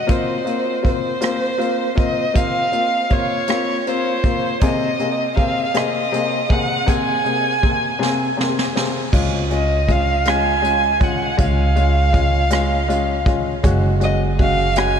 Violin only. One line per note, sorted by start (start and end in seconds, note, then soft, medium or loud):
0.00 0.12 D#5 medium
0.11 0.85 C5 medium
0.86 1.94 C5 medium
1.99 2.38 D#5 medium
2.36 3.14 F5 medium
3.12 3.87 C#5 medium
3.88 4.58 C5 medium
4.63 5.34 D#5 medium
5.37 5.79 F5 medium
5.77 6.53 D#5 medium
6.52 6.90 F#5 medium
6.89 8.39 G#5 medium
9.52 9.93 D#5 medium
9.92 10.30 F5 medium
10.29 11.05 G#5 medium
11.04 11.40 F#5 medium
11.42 13.24 F5 medium
14.04 14.20 D#5 medium
14.41 14.79 F5 medium
14.77 15.00 G#5 loud